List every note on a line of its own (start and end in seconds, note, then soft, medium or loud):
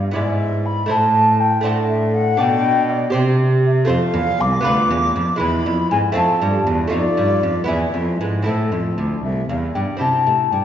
0.00 0.12 G2 medium
0.00 0.15 G2 medium
0.00 0.10 B3 soft
0.00 0.12 F4 soft
0.00 0.13 D5 soft
0.11 0.86 B3 medium
0.11 0.86 E4 soft
0.11 0.87 D5 soft
0.15 0.86 G#2 medium
0.15 0.89 G#2 medium
0.15 0.24 E5 medium
0.23 0.31 D5 medium
0.29 0.67 E5 medium
0.65 0.92 B5 medium
0.86 1.60 A3 soft
0.86 1.61 E4 soft
0.86 1.62 C5 soft
0.90 1.63 A2 medium
0.90 1.61 A2 medium
0.90 1.41 A5 loud
1.40 1.63 G5 medium
1.61 2.38 A2 medium
1.61 2.35 A3 medium
1.61 2.36 D4 medium
1.61 2.37 C5 medium
1.61 1.70 F#5 medium
1.65 2.36 A2 medium
1.88 2.15 E5 medium
2.14 2.41 F#5 medium
2.37 3.12 B2 medium
2.37 3.10 B2 medium
2.37 3.10 D4 soft
2.37 3.11 D5 soft
2.37 2.91 G5 loud
2.89 3.14 D5 medium
3.10 3.85 C3 medium
3.10 3.87 C3 medium
3.10 3.85 G4 medium
3.10 3.86 C5 medium
3.64 3.87 E5 medium
3.85 3.97 F2 medium
3.85 4.12 A3 medium
3.85 4.61 F4 medium
3.85 4.62 C5 medium
3.85 4.42 F5 loud
3.89 4.12 F2 medium
4.14 4.37 E2 medium
4.14 4.22 E2 medium
4.40 4.64 C2 medium
4.40 5.40 D6 loud
4.60 5.36 B3 medium
4.60 5.37 F4 medium
4.60 5.38 B4 medium
4.65 4.92 D2 medium
4.65 4.88 D2 medium
4.90 5.15 E2 medium
4.90 5.13 E2 medium
5.15 5.23 F2 medium
5.15 5.38 F2 medium
5.36 5.63 G#3 medium
5.36 6.12 E4 medium
5.36 6.13 B4 medium
5.40 5.67 E2 medium
5.40 5.63 E2 medium
5.40 5.90 B5 loud
5.66 5.90 F2 medium
5.66 5.89 F2 medium
5.91 5.99 G#2 medium
5.91 6.14 G#2 medium
5.91 5.97 G#5 medium
6.12 6.39 F2 medium
6.12 6.38 A3 medium
6.12 6.39 C4 medium
6.12 6.89 F4 medium
6.16 6.24 F2 medium
6.16 6.66 A5 medium
6.41 6.66 G2 medium
6.41 6.64 G2 medium
6.67 6.89 E2 medium
6.67 6.92 E2 medium
6.87 7.14 A3 medium
6.87 7.64 D#4 soft
6.87 7.65 F4 medium
6.92 7.00 F2 medium
6.92 7.15 F2 medium
6.92 7.69 D5 loud
7.17 7.40 G2 medium
7.17 7.44 G2 medium
7.43 7.68 F2 medium
7.43 7.66 F2 medium
7.64 7.91 B3 medium
7.64 8.42 E4 medium
7.64 8.43 G#4 medium
7.64 8.19 E5 medium
7.68 7.91 E2 medium
7.68 7.94 E2 medium
7.94 8.17 F2 medium
7.94 8.19 F2 medium
8.19 8.48 G#2 medium
8.19 8.44 G#2 medium
8.19 8.25 B4 medium
8.42 8.73 A2 medium
8.42 9.95 C4 soft
8.42 9.96 E4 soft
8.42 9.22 A4 medium
8.42 9.97 A4 soft
8.47 8.70 A2 soft
8.72 8.95 F2 medium
8.72 8.97 F2 medium
8.98 9.21 D2 medium
8.98 9.23 D2 medium
9.23 9.49 C2 medium
9.23 9.47 E5 medium
9.49 9.73 E2 medium
9.49 9.75 E2 medium
9.49 9.55 F5 medium
9.74 9.98 G2 soft
9.74 9.83 G2 medium
9.74 9.80 G5 medium
9.97 10.65 C4 soft
9.97 10.65 E4 soft
9.97 10.65 G4 soft
9.97 10.52 A5 medium
10.01 10.25 C3 medium
10.01 10.24 C3 soft
10.26 10.49 A2 soft
10.26 10.50 A2 soft
10.51 10.65 G2 medium
10.51 10.65 G2 soft
10.51 10.65 G5 medium